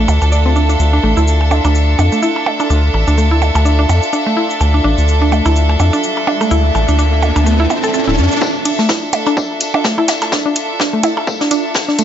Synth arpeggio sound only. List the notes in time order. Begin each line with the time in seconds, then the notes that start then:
0.32 D5
0.46 C4
0.56 D4
0.69 D4
0.93 D4
1.03 A3
1.17 E4
1.51 D4
1.65 D4
1.99 D4
2.12 A3
2.22 E4
2.60 D4
2.70 D4
3.08 D4
3.18 A3
3.31 E4
3.65 D4
3.79 D4
4.13 D4
4.26 A3
4.37 E4
4.74 D4
4.84 D4
5.22 D4
5.32 A3
5.46 E4
5.80 D4
5.93 D4
6.27 D4
6.41 A3
6.51 E4
6.88 D4
6.99 D4
7.36 D4
7.46 A3
7.60 E4
7.84 A4
7.94 A4
8.07 E4
8.65 D4
8.79 A3
8.89 E4
9.27 D4
9.37 D4
9.74 D4
9.85 A3
9.98 E4
10.32 D4
10.46 D4
10.80 D4
10.93 A3
11.04 E4
11.41 D4
11.51 D4
11.88 D4
11.99 A3